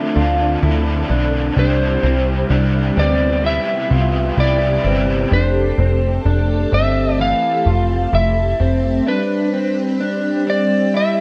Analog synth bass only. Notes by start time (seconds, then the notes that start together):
0.16 D2
0.63 D2
1.10 B1
1.56 C2
2.03 C2
2.50 C2
2.97 D2
3.91 C2
4.37 C2
4.84 G1
5.31 F1
5.78 F1
6.25 F1
6.72 G1
7.66 F1
8.13 F1
8.60 F1